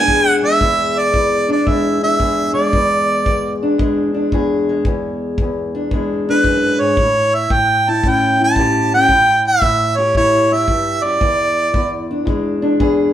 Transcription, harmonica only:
Already playing: G#5
0.44 E5
0.99 D5
1.53 D5
1.68 E5
2.04 E5
2.54 D5
6.30 B4
6.81 C#5
7.35 E5
7.53 G5
7.90 A5
8.09 G5
8.44 A5
8.94 G5
9.48 E5
9.98 C#5
10.17 C#5
10.53 E5
11.04 D5

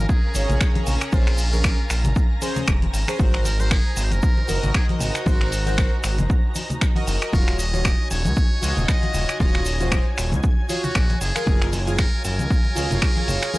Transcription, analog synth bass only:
0.35 G#1
0.50 A#1
0.87 A#1
1.13 A#1
1.90 A#1
2.05 G#1
2.68 F1
2.94 G#1
3.19 G#1
3.97 G#1
4.12 F#1
4.49 F#1
4.63 G#1
5.01 G#1
5.26 G#1
6.04 G#1
6.19 F#1
7.07 F#1
7.33 D#1
8.11 D#1
8.25 C#2
8.63 C#2
8.77 D#1
9.14 D#1
9.40 D#1
10.18 D#1
10.32 C#2
10.95 A#1
11.21 F#1
11.47 F#1
12.25 F#1
12.39 C#2
12.76 C#2
12.91 F#1
13.28 F#1

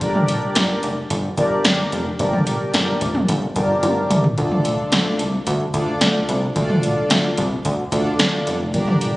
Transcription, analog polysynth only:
0.01 D4 G4 A#4 D5
1.38 D4 G4 A#4 D5
2.19 D4 G4 A#4 D5
3.56 D4 G4 A#4 D5
4.38 D4 F4 A4 D5
5.74 D4 F4 A4 D5
6.56 D4 F4 A4 D5
7.92 D4 F4 A4 D5
8.74 D4 G4 A#4 D5

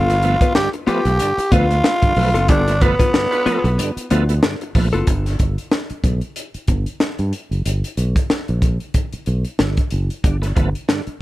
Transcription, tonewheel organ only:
0.10 A3 B3
0.23 F3 A3 B3
0.56 G2 D3
0.88 F3 A3 B3
1.06 A3 B3
1.21 G2 D3
1.52 F3 A3 B3
1.71 A3 B3
1.85 A3 B3
2.03 G2 D3
2.17 F3 A3 B3
2.50 G2 D3
2.68 A3 B3
2.82 F3 A3 B3
3.14 G2 D3
3.46 F3 A3 B3
3.64 A3 B3
3.78 G2 D3
4.11 F3 A3 B3
4.29 A3 B3
4.43 G2 D3
4.75 F3 A3 B3
4.94 A3 B3
10.24 G2 D3
10.42 A3 B3
10.56 F3 A3 B3
10.88 G2 D3

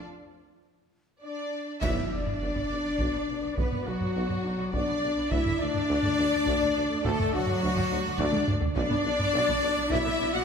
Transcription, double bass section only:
1.82 B1
1.98 B1
2.12 B1
2.27 B1
2.41 B1
2.56 B1
2.70 B1
2.84 B1
3.00 B1
3.13 B1
3.28 B1
3.43 B1
3.57 B1
3.72 B1
3.87 B1
4.01 B1
4.15 B1
4.29 B1
4.44 B1
4.58 B1
4.72 B1
4.87 B1
5.01 B1
5.17 B1
5.31 D2
5.46 D2
5.60 D2
5.75 D2
5.89 D2
6.04 D2
6.20 D2
6.33 D2
6.47 D2
6.62 D2
6.77 D2
6.91 D2
7.06 D2
7.20 D2
7.34 D2
7.49 D2
7.63 D2
7.77 D2
7.91 D2
8.06 D2
8.19 D2
8.35 D2
8.49 D2
8.64 D2
8.77 B1
8.92 B1
9.06 B1
9.20 B1
9.33 B1
9.49 B1
9.62 B1
9.77 B1
9.91 B1
10.06 B1
10.20 B1
10.34 B1

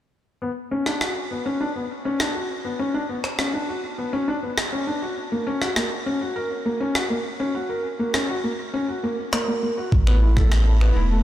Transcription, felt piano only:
0.42 B3
0.71 C#4
0.86 D4
1.01 F#4
1.31 B3
1.46 C#4
1.61 D4
1.75 B3
2.05 C#4
2.20 D4
2.35 F#4
2.64 B3
2.79 C#4
2.94 D4
3.09 B3
3.39 C#4
3.54 D4
3.68 F#4
3.98 B3
4.13 C#4
4.28 D4
4.43 B3
4.72 C#4
4.87 D4
5.02 F#4
5.32 A#3
5.47 C#4
5.62 F#4
5.76 A#3
6.06 C#4
6.21 F#4
6.36 A#4
6.66 A#3
6.80 C#4
6.95 F#4
7.10 A#3
7.40 C#4
7.55 F#4
7.69 A#4
7.99 A#3
8.14 C#4
8.29 F#4
8.44 A#3
8.74 C#4
8.88 F#4
9.03 A#3
9.33 A#3
9.48 A#3
9.63 A#3
9.78 F#4
10.07 B3
10.22 E4
10.37 A4
10.67 A3
10.81 B3
10.96 E4
11.11 A3

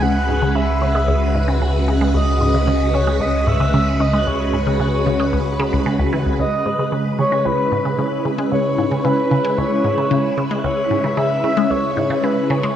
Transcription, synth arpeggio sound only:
0.02 C#2
0.29 G#2
0.42 C#3
0.55 C#3
0.82 C#3
0.95 G#3
1.08 C#2
1.35 G#2
1.48 C#3
1.61 C#3
1.88 C#3
2.01 G#3
2.14 C#2
2.41 G#2
2.54 C#3
2.67 C#3
2.94 C#3
3.07 G#3
3.20 C#2
3.47 G#2
3.60 C#3
3.74 C#3
4.00 C#3
4.13 G#3
4.27 C#2
4.53 G#2
4.67 C#3
4.80 C#3
5.06 C#3
5.20 G#3
5.33 C#2
5.60 C#3
5.73 C#2
5.86 C#3
5.99 C#2
6.13 E3
6.26 C#2
6.39 C#2
6.66 G#2
6.79 C#3
6.92 C#3
7.19 C#3
7.32 G#3
7.45 C#2
7.72 G#2
7.85 C#3
7.99 C#3
8.25 C#3
8.38 G#3
8.52 C#2
8.78 G#2
8.91 C#3
9.05 C#3
9.31 C#3
9.45 G#3
9.58 C#2
9.84 G#2
9.98 C#3
10.11 C#3
10.38 C#3
10.51 G#3
10.64 C#2
10.91 G#2
11.04 C#3
11.17 C#3
11.44 C#3
11.57 G#3
11.70 C#2
11.97 G#2
12.10 C#3
12.24 C#3
12.50 C#3
12.63 G#3

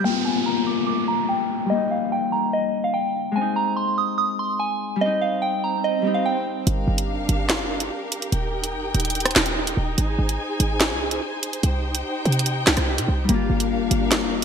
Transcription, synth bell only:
0.04 G5
0.25 G#5
0.46 A#5
0.67 D6
0.87 D6
1.08 A#5
1.29 G5
1.70 D#5
1.91 F5
2.12 G5
2.32 A#5
2.53 D#5
2.84 F5
2.94 G5
3.36 G#5
3.56 A#5
3.77 C6
3.98 D#6
4.18 D#6
4.39 C6
4.60 G#5
5.01 D#5
5.21 F5
5.42 G5
5.64 A#5
5.84 D#5
6.14 F5
6.26 G5

